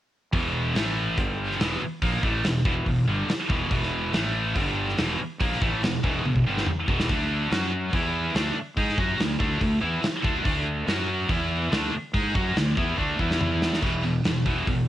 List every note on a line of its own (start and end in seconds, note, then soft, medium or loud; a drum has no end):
0.33 0.72 E1 medium
0.33 0.74 E2 medium
0.33 0.75 B2 medium
0.33 0.75 E3 loud
0.33 kick loud
0.33 open hi-hat medium
0.75 1.14 A1 medium
0.75 1.17 A2 medium
0.75 1.17 E3 loud
0.75 1.18 A3 medium
0.75 snare loud
0.75 open hi-hat medium
1.18 1.57 G1 medium
1.18 1.59 G2 medium
1.18 1.60 D3 medium
1.18 1.60 G3 medium
1.18 kick loud
1.18 open hi-hat medium
1.51 snare soft
1.60 1.80 E1 medium
1.60 1.81 E2 medium
1.60 1.81 B2 loud
1.60 1.81 E3 loud
1.60 snare loud
1.60 open hi-hat medium
1.81 muted fingered electric bass stroke soft
1.81 muted distorted electric guitar stroke medium
2.02 2.22 A#1 medium
2.02 2.23 A#2 medium
2.02 2.23 F3 medium
2.02 2.23 A#3 loud
2.02 kick loud
2.02 open hi-hat medium
2.23 2.43 A1 medium
2.23 2.44 A2 medium
2.23 2.44 E3 loud
2.23 2.44 A3 medium
2.23 kick loud
2.44 2.64 E1 medium
2.44 2.61 E2 medium
2.44 2.62 B2 medium
2.44 snare loud
2.44 open hi-hat medium
2.65 2.85 E1 medium
2.65 2.86 E2 medium
2.65 2.86 B2 medium
2.65 2.87 E3 loud
2.65 kick loud
2.86 3.06 E1 medium
2.86 3.04 E2 medium
2.86 3.04 B2 medium
2.86 kick medium
2.86 open hi-hat medium
3.08 3.27 G1 medium
3.08 3.28 G2 medium
3.08 3.28 D3 medium
3.08 3.29 G3 loud
3.28 muted fingered electric bass stroke soft
3.28 muted distorted electric guitar stroke medium
3.28 snare loud
3.28 open hi-hat medium
3.49 3.69 E1 medium
3.49 3.69 E2 medium
3.49 3.70 B2 loud
3.49 3.70 E3 medium
3.49 kick loud
3.71 4.10 E1 medium
3.71 4.13 E2 medium
3.71 4.13 B2 medium
3.71 4.13 E3 loud
3.71 kick loud
3.71 open hi-hat medium
3.83 snare soft
4.13 4.53 A1 medium
4.13 4.57 A2 medium
4.13 4.57 E3 medium
4.13 4.56 A3 loud
4.13 snare loud
4.13 open hi-hat medium
4.56 4.95 G1 medium
4.56 4.97 G2 medium
4.56 4.98 D3 medium
4.56 4.98 G3 loud
4.56 kick loud
4.56 open hi-hat medium
4.88 snare soft
4.97 5.18 E1 medium
4.97 5.18 E2 medium
4.97 5.19 B2 loud
4.97 5.19 E3 medium
4.97 snare loud
4.97 open hi-hat medium
5.20 muted distorted electric guitar stroke medium
5.20 muted fingered electric bass stroke soft
5.40 5.60 A#1 medium
5.40 5.61 A#2 medium
5.40 5.61 F3 medium
5.40 5.61 A#3 loud
5.40 kick loud
5.40 open hi-hat medium
5.52 snare soft
5.61 5.81 A1 medium
5.61 5.82 A2 medium
5.61 5.82 E3 medium
5.61 5.82 A3 loud
5.61 kick loud
5.83 6.02 E1 medium
5.83 6.00 E2 medium
5.83 6.00 B2 medium
5.83 snare loud
5.83 open hi-hat medium
6.03 6.23 E1 medium
6.03 6.24 E2 medium
6.03 6.24 B2 medium
6.03 6.24 E3 medium
6.03 kick loud
6.25 6.45 E1 medium
6.25 6.42 E2 medium
6.25 6.42 B2 medium
6.25 high tom medium
6.36 kick medium
6.46 6.66 G1 medium
6.46 6.66 G2 medium
6.46 6.67 D3 medium
6.46 6.67 G3 loud
6.57 snare medium
6.66 muted distorted electric guitar stroke medium
6.66 muted fingered electric bass stroke soft
6.66 mid tom medium
6.88 7.07 E1 medium
6.88 7.09 E2 medium
6.88 7.09 B2 medium
6.88 7.09 E3 loud
6.88 kick loud
7.00 snare medium
7.09 7.48 D2 medium
7.09 7.50 D3 medium
7.09 7.51 A3 medium
7.09 7.51 D4 medium
7.09 kick loud
7.09 open hi-hat medium
7.51 7.90 F#2 medium
7.51 7.92 F#3 medium
7.51 7.93 C#4 medium
7.51 7.93 F#4 medium
7.51 snare loud
7.51 open hi-hat medium
7.93 8.32 E2 medium
7.93 8.35 E3 medium
7.93 8.35 B3 loud
7.93 8.35 E4 loud
7.93 kick loud
7.93 open hi-hat medium
8.35 8.55 D2 medium
8.35 8.55 D3 medium
8.35 8.56 A3 medium
8.35 8.56 D4 loud
8.35 snare loud
8.35 open hi-hat medium
8.56 muted fingered electric bass stroke soft
8.56 muted distorted electric guitar stroke medium
8.77 8.97 G#2 medium
8.77 8.98 G#3 medium
8.77 8.98 D#4 medium
8.77 8.98 G#4 medium
8.77 kick loud
8.77 open hi-hat medium
8.89 snare soft
8.98 9.18 F#2 medium
8.98 9.19 F#3 medium
8.98 9.19 C#4 medium
8.98 9.19 F#4 loud
8.98 kick loud
9.19 9.39 D2 medium
9.19 9.36 D3 medium
9.19 9.36 A3 medium
9.19 snare loud
9.19 open hi-hat medium
9.40 9.60 D2 medium
9.40 9.60 D3 medium
9.40 9.60 A3 medium
9.40 9.61 D4 medium
9.40 kick loud
9.61 9.81 D2 medium
9.61 9.78 D3 medium
9.61 9.78 A3 medium
9.61 kick medium
9.61 open hi-hat medium
9.81 10.02 E2 medium
9.81 10.02 E3 loud
9.81 10.02 B3 medium
9.81 10.03 E4 loud
10.03 muted distorted electric guitar stroke medium
10.03 muted fingered electric bass stroke soft
10.03 snare loud
10.03 open hi-hat medium
10.23 10.44 D2 medium
10.23 10.43 D3 medium
10.23 10.44 A3 medium
10.23 10.44 D4 loud
10.23 kick loud
10.44 10.85 D2 medium
10.44 10.86 D3 medium
10.44 10.87 A3 loud
10.44 10.87 D4 loud
10.44 kick loud
10.44 open hi-hat medium
10.87 11.27 F#2 medium
10.87 11.29 F#3 medium
10.87 11.29 C#4 medium
10.87 11.29 F#4 loud
10.87 snare loud
10.87 open hi-hat medium
11.29 11.69 E2 medium
11.29 11.71 E3 medium
11.29 11.71 B3 medium
11.29 11.72 E4 loud
11.29 kick loud
11.29 open hi-hat medium
11.71 11.92 D2 medium
11.71 11.92 D3 medium
11.71 11.93 A3 medium
11.71 11.93 D4 loud
11.71 snare loud
11.71 open hi-hat medium
11.93 muted distorted electric guitar stroke medium
11.93 muted fingered electric bass stroke soft
12.14 12.34 G#2 medium
12.14 12.34 G#3 medium
12.14 12.35 D#4 loud
12.14 12.35 G#4 loud
12.14 kick medium
12.14 open hi-hat medium
12.34 12.54 F#2 medium
12.34 12.55 F#3 medium
12.34 12.55 C#4 medium
12.34 12.56 F#4 loud
12.34 kick loud
12.56 12.76 D2 medium
12.56 12.73 D3 medium
12.56 12.73 A3 medium
12.56 snare loud
12.56 open hi-hat medium
12.77 12.97 E2 medium
12.77 12.97 E3 medium
12.77 12.98 B3 medium
12.77 12.98 E4 loud
12.77 kick loud
12.97 13.18 D2 medium
12.97 13.18 D3 medium
12.97 13.19 A3 medium
12.97 13.19 D4 medium
12.97 kick medium
13.19 13.78 E2 medium
13.19 13.82 E3 medium
13.19 13.82 B3 loud
13.19 13.82 E4 loud
13.19 kick medium
13.31 snare medium
13.41 mid tom medium
13.62 snare loud
13.74 snare medium
13.83 14.20 E1 medium
13.83 14.02 E2 medium
13.83 14.03 B2 medium
13.83 14.03 E3 medium
13.83 kick loud
13.83 crash medium
14.03 14.23 E2 medium
14.03 14.23 B2 medium
14.03 open hi-hat soft
14.24 14.43 E1 medium
14.24 14.44 E2 medium
14.24 14.44 B2 medium
14.24 snare loud
14.24 open hi-hat medium
14.46 14.65 E1 medium
14.46 14.66 E2 medium
14.46 14.66 B2 medium
14.46 14.66 E3 medium
14.46 kick medium
14.46 open hi-hat medium
14.67 14.86 E1 medium
14.67 14.86 E2 medium
14.67 14.87 B2 medium
14.67 kick loud
14.67 open hi-hat medium